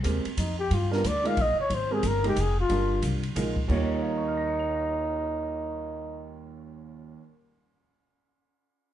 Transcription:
0.03 0.24 D#2 medium
0.03 0.22 G#3 soft
0.03 0.22 C4 soft
0.03 0.23 G4 soft
0.03 0.23 A#4 medium
0.03 kick soft
0.03 hi-hat pedal medium
0.03 ride medium
0.25 muted upright bass stroke soft
0.25 ride soft
0.37 0.69 F2 medium
0.37 0.58 D#4 medium
0.37 kick soft
0.37 hi-hat pedal medium
0.37 ride medium
0.59 0.75 G4 loud
0.70 1.03 G2 medium
0.70 0.93 F4 medium
0.70 kick soft
0.70 ride medium
0.91 1.02 G3 medium
0.91 1.02 D4 medium
0.91 1.03 F4 medium
0.91 1.02 A#4 medium
0.91 1.09 A#4 medium
0.91 snare soft
1.04 1.36 D2 medium
1.04 1.29 D5 medium
1.04 kick soft
1.04 hi-hat pedal medium
1.04 ride medium
1.24 1.35 G#3 medium
1.24 1.35 D#4 medium
1.24 1.36 F4 medium
1.24 1.36 A#4 medium
1.24 1.43 F5 medium
1.24 ride soft
1.37 1.56 A#1 medium
1.37 kick soft
1.37 ride medium
1.42 1.60 D#5 medium
1.57 1.76 C#5 medium
1.57 muted upright bass stroke soft
1.70 2.02 G#1 medium
1.70 kick soft
1.70 ride medium
1.74 1.95 C5 medium
1.90 2.02 G#3 medium
1.90 2.02 C4 soft
1.90 2.02 G4 medium
1.90 2.08 G#4 medium
1.90 2.02 A#4 medium
2.03 2.35 G1 medium
2.03 kick soft
2.03 hi-hat pedal medium
2.03 ride medium
2.07 2.26 A#4 medium
2.24 2.35 G#3 medium
2.24 2.35 D#4 medium
2.24 2.35 G4 medium
2.24 2.42 G4 medium
2.24 2.35 A#4 medium
2.24 ride soft
2.36 2.68 F1 medium
2.36 kick soft
2.36 hi-hat pedal medium
2.36 ride medium
2.41 2.59 G#4 medium
2.60 3.01 F4 medium
2.69 3.01 G1 medium
2.69 3.19 G3 medium
2.69 3.19 D4 medium
2.69 3.19 F4 medium
2.69 3.20 A#4 medium
2.69 kick soft
2.69 ride medium
3.02 3.35 C2 medium
3.02 kick soft
3.02 hi-hat pedal medium
3.02 ride medium
3.23 ride soft
3.36 3.68 A#1 medium
3.36 3.54 G#3 medium
3.36 3.54 D#4 soft
3.36 3.55 F4 medium
3.36 3.55 A#4 medium
3.36 kick soft
3.36 hi-hat pedal medium
3.36 ride medium
3.56 kick medium
3.68 7.17 D#2 medium
3.68 7.14 D#2 medium
3.68 7.18 D#3 medium
3.68 7.18 G3 medium
3.68 6.45 D#4 medium
3.68 7.19 F4 medium
3.68 7.19 C#5 medium
3.68 kick soft
3.68 crash medium
4.02 7.14 F5 soft
4.10 7.18 A#5 soft
4.18 7.22 C#6 soft
4.28 7.27 F6 soft
4.37 7.32 A#6 soft
4.47 7.37 C#7 soft
4.59 7.43 F7 soft

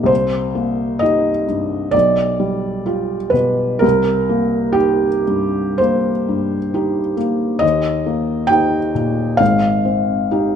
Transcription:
0.00 1.87 C2 soft
0.00 0.12 A#2 soft
0.00 0.12 A#3 soft
0.00 0.12 D#4 soft
0.00 0.12 G4 soft
0.00 0.11 D#5 medium
0.06 1.00 C5 medium
0.55 1.29 A#3 soft
0.99 1.44 D#4 soft
0.99 1.44 G4 soft
0.99 1.93 D#5 medium
1.48 1.94 G2 soft
1.91 3.79 B1 soft
1.91 3.34 D5 medium
2.40 3.16 G3 soft
2.86 3.30 F4 soft
2.86 3.31 G4 soft
3.30 3.82 B2 soft
3.30 3.81 B4 medium
3.79 5.77 C2 medium
3.79 4.75 A#4 medium
4.29 5.06 A#3 soft
4.73 5.24 D#4 soft
4.73 5.79 G4 medium
5.28 6.10 G2 soft
5.78 6.56 A#3 soft
5.78 7.16 C5 medium
6.29 7.00 G2 soft
6.74 7.14 D#4 soft
6.74 7.14 G4 soft
7.17 7.62 A#3 soft
7.59 9.35 D#2 medium
7.59 8.49 D#5 medium
8.06 8.77 A#3 soft
8.47 8.90 D#4 soft
8.47 8.90 G4 soft
8.47 9.38 G5 medium
8.95 9.40 A#2 soft
9.37 10.56 G#1 soft
9.37 10.56 F5 medium
9.85 10.56 C4 soft
10.31 10.56 D#4 soft
10.31 10.56 G4 soft

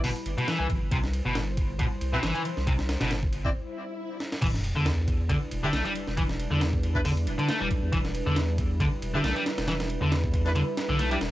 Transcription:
0.00 0.12 G1 medium
0.00 3.51 G3 medium
0.00 3.51 E4 medium
0.00 0.88 B4 medium
0.00 open hi-hat medium
0.04 0.08 B2 medium
0.16 ride soft
0.25 0.35 G1 medium
0.25 ride medium
0.38 0.47 B2 medium
0.38 ride soft
0.48 0.59 E3 loud
0.48 snare medium
0.48 ride medium
0.59 0.67 C2 loud
0.59 0.66 E3 loud
0.70 0.79 G1 loud
0.70 kick medium
0.70 ride medium
0.82 0.90 G1 loud
0.91 1.21 C2 loud
0.91 0.96 C3 medium
0.91 3.52 C5 medium
0.91 kick loud
0.91 ride medium
1.04 snare soft
1.13 ride medium
1.25 1.87 G1 medium
1.25 1.34 B2 medium
1.35 snare loud
1.35 ride medium
1.57 kick loud
1.57 ride medium
1.79 1.84 B2 medium
1.79 kick loud
1.79 ride medium
2.01 2.19 C2 medium
2.01 ride medium
2.13 2.22 B2 medium
2.13 2.19 C4 medium
2.13 2.19 E4 medium
2.13 2.19 B4 medium
2.23 2.32 G1 loud
2.23 2.34 E3 loud
2.23 snare loud
2.23 ride medium
2.35 2.41 E3 loud
2.35 ride soft
2.45 ride medium
2.57 2.97 C2 loud
2.57 snare soft
2.67 2.71 C3 medium
2.67 kick loud
2.67 ride medium
2.79 snare medium
2.89 snare loud
2.89 ride medium
3.01 3.55 G1 medium
3.01 3.10 B2 medium
3.01 snare loud
3.01 ride medium
3.11 snare loud
3.11 ride medium
3.23 kick medium
3.33 ride medium
3.45 3.50 C4 medium
3.45 3.50 E4 medium
3.45 3.50 D5 medium
3.45 kick loud
3.55 swell medium
4.20 snare medium
4.32 snare medium
4.42 4.72 E1 loud
4.42 4.46 E3 medium
4.42 11.31 G3 medium
4.42 11.31 D4 medium
4.42 11.31 E4 medium
4.42 11.31 B4 medium
4.42 kick loud
4.42 crash medium
4.42 ride medium
4.42 sub drop medium
4.54 snare medium
4.64 ride medium
4.76 5.38 E2 medium
4.76 4.85 D3 medium
4.86 snare loud
4.86 ride medium
5.08 kick medium
5.08 ride medium
5.30 5.34 D3 medium
5.30 kick loud
5.30 ride medium
5.51 5.69 E1 medium
5.51 ride medium
5.63 5.72 D3 medium
5.63 5.69 D4 medium
5.63 5.69 E4 medium
5.63 5.69 G4 medium
5.73 5.83 B1 loud
5.73 5.84 A3 loud
5.73 snare loud
5.73 ride medium
5.85 5.91 G3 loud
5.85 ride soft
5.95 ride medium
6.07 6.47 E1 loud
6.07 snare soft
6.17 6.22 E3 medium
6.17 kick loud
6.17 ride medium
6.29 snare medium
6.40 ride medium
6.51 7.28 E2 medium
6.51 6.60 D3 medium
6.61 snare loud
6.61 ride medium
6.73 kick loud
6.83 ride medium
6.95 7.00 D4 medium
6.95 7.00 E4 medium
6.95 7.01 B4 medium
6.95 kick loud
7.05 7.09 D3 medium
7.05 open hi-hat medium
7.17 ride soft
7.27 7.36 D1 medium
7.27 ride medium
7.39 7.48 D3 medium
7.39 ride soft
7.49 7.60 A3 loud
7.49 snare loud
7.49 ride medium
7.61 7.68 E1 medium
7.61 7.67 G3 loud
7.71 7.80 B1 medium
7.71 kick medium
7.71 ride medium
7.83 7.90 E2 loud
7.92 8.22 E1 loud
7.92 7.97 E3 medium
7.92 kick loud
7.92 ride medium
8.05 snare medium
8.15 ride medium
8.26 8.88 E2 medium
8.26 8.35 D3 medium
8.36 snare loud
8.36 ride medium
8.58 kick loud
8.58 ride medium
8.80 8.85 D3 medium
8.80 kick loud
8.80 ride medium
9.02 9.20 E1 medium
9.02 ride medium
9.14 9.23 D3 medium
9.14 9.19 D4 medium
9.14 9.19 E4 medium
9.14 9.19 G4 medium
9.24 9.33 B1 medium
9.24 9.35 A3 loud
9.24 snare loud
9.24 ride medium
9.36 9.42 G3 loud
9.36 ride soft
9.46 snare loud
9.46 ride medium
9.58 9.97 E1 loud
9.58 snare loud
9.58 ride medium
9.68 9.72 E3 medium
9.68 snare loud
9.68 ride medium
9.80 snare loud
9.80 ride medium
9.90 ride medium
10.01 10.63 E2 loud
10.01 10.11 D3 medium
10.12 snare loud
10.12 ride medium
10.24 kick medium
10.34 kick loud
10.34 ride medium
10.45 10.51 D4 medium
10.45 10.51 E4 medium
10.45 10.51 B4 medium
10.45 snare soft
10.56 10.60 D3 medium
10.56 ride medium
10.77 snare loud
10.77 ride medium
10.89 11.17 B1 loud
10.89 10.98 D3 medium
10.99 11.10 A3 loud
10.99 ride medium
11.11 11.17 G3 loud
11.11 11.16 D4 medium
11.11 11.16 E4 medium
11.11 11.16 G4 medium
11.11 ride soft
11.21 11.30 E1 loud
11.21 snare loud
11.21 ride medium

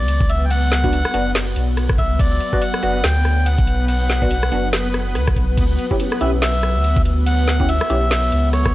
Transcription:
0.00 1.03 C#2 loud
0.00 8.75 F#3 medium
0.00 8.75 B3 medium
0.00 0.31 D5 loud
0.08 closed hi-hat medium
0.08 crash soft
0.20 kick loud
0.29 0.45 E5 loud
0.29 closed hi-hat medium
0.45 0.51 G5 medium
0.51 1.31 F#5 loud
0.51 closed hi-hat medium
0.51 crash medium
0.72 snare medium
0.72 closed hi-hat medium
0.84 0.96 B3 medium
0.84 0.96 D4 medium
0.84 0.96 F#4 medium
0.84 kick medium
0.93 closed hi-hat medium
0.93 crash soft
1.05 cross-stick medium
1.14 1.55 F#1 medium
1.14 1.29 B3 medium
1.14 1.29 D4 medium
1.14 1.29 F#4 loud
1.14 closed hi-hat medium
1.35 snare loud
1.35 closed hi-hat medium
1.35 crash medium
1.56 2.12 B1 medium
1.56 closed hi-hat medium
1.77 cross-stick medium
1.77 closed hi-hat medium
1.77 crash soft
1.90 kick loud
1.90 cross-stick medium
1.98 2.20 E5 loud
1.98 kick medium
1.98 closed hi-hat medium
2.11 2.39 C#2 medium
2.19 2.63 D5 loud
2.19 kick loud
2.19 closed hi-hat medium
2.19 crash medium
2.41 closed hi-hat medium
2.53 2.65 B3 medium
2.53 2.65 D4 medium
2.53 2.65 F#4 medium
2.53 kick medium
2.61 3.05 F#5 loud
2.61 closed hi-hat medium
2.61 crash soft
2.74 cross-stick medium
2.83 3.03 F#1 medium
2.83 2.98 B3 medium
2.83 2.98 D4 medium
2.83 2.98 F#4 loud
2.83 closed hi-hat medium
3.03 3.57 D2 loud
3.03 3.47 G5 loud
3.03 snare loud
3.03 closed hi-hat medium
3.03 crash medium
3.25 cross-stick medium
3.25 closed hi-hat medium
3.46 3.85 F#5 loud
3.46 closed hi-hat medium
3.46 crash soft
3.59 4.51 B1 loud
3.59 kick loud
3.67 closed hi-hat medium
3.88 4.69 F#5 loud
3.88 closed hi-hat medium
3.88 crash medium
4.10 snare medium
4.10 closed hi-hat medium
4.22 4.34 B3 medium
4.22 4.34 D4 medium
4.22 4.34 F#4 medium
4.22 kick medium
4.31 closed hi-hat medium
4.31 crash soft
4.43 cross-stick medium
4.52 5.17 F#1 medium
4.52 4.67 B3 medium
4.52 4.67 D4 medium
4.52 4.67 F#4 loud
4.52 closed hi-hat medium
4.73 snare loud
4.73 closed hi-hat medium
4.73 crash medium
4.94 cross-stick medium
4.94 closed hi-hat medium
5.15 5.35 D2 medium
5.15 cross-stick medium
5.15 closed hi-hat medium
5.15 crash soft
5.28 kick loud
5.28 cross-stick medium
5.36 5.56 B1 medium
5.36 kick medium
5.36 closed hi-hat medium
5.57 5.77 C#2 loud
5.57 kick loud
5.57 closed hi-hat medium
5.57 crash medium
5.79 closed hi-hat medium
5.91 6.03 C#4 medium
5.91 6.03 E4 medium
5.91 6.03 G4 medium
5.91 kick medium
6.00 closed hi-hat medium
6.00 crash soft
6.12 cross-stick medium
6.21 6.77 B1 medium
6.21 6.36 C#4 medium
6.21 6.36 E4 medium
6.21 6.36 G4 loud
6.21 6.30 E5 loud
6.21 closed hi-hat medium
6.42 7.01 E5 loud
6.42 snare loud
6.42 closed hi-hat medium
6.42 crash medium
6.63 cross-stick medium
6.63 closed hi-hat medium
6.75 7.79 D2 loud
6.84 closed hi-hat medium
6.84 crash soft
6.97 kick loud
7.05 closed hi-hat soft
7.26 7.70 F#5 loud
7.26 closed hi-hat medium
7.26 crash medium
7.48 snare medium
7.48 closed hi-hat medium
7.60 7.72 C#4 medium
7.60 7.72 E4 medium
7.60 7.72 G4 medium
7.60 kick medium
7.69 8.49 E5 loud
7.69 closed hi-hat medium
7.69 crash soft
7.81 cross-stick medium
7.90 8.31 B1 medium
7.90 8.05 C#4 medium
7.90 8.05 E4 medium
7.90 8.05 G4 loud
7.90 closed hi-hat medium
8.11 snare loud
8.11 closed hi-hat medium
8.11 crash medium
8.32 8.75 C#2 medium
8.32 closed hi-hat medium
8.53 8.75 C#5 loud
8.53 cross-stick medium
8.53 closed hi-hat medium
8.53 crash soft
8.65 kick loud
8.65 cross-stick medium

